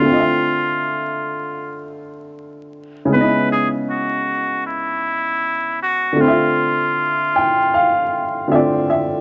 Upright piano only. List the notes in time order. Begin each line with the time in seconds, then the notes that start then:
Already playing: D3
0.02 A3 C4
0.09 F4 D#5
0.19 E5
3.05 C#3 G#3
3.13 B3 D#4
3.21 E4 D#5
6.13 D3 A3
6.20 C4
6.24 E4 E5
6.30 F4
7.36 G5
7.74 F5
8.48 D3 A3 C4 E5
8.53 F4 D5
8.90 E5